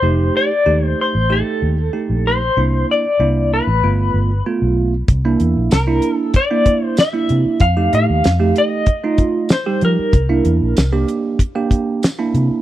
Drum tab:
HH |--------|--------|xxxxxxxx|xxxxxxxx|
TB |--------|--------|--x---x-|--x---x-|
SD |--------|--------|--o---o-|--o---o-|
BD |--------|--------|o---oo--|o---oo--|

HH |xxxxxxxx|
TB |--x---x-|
SD |--o---o-|
BD |o---oo--|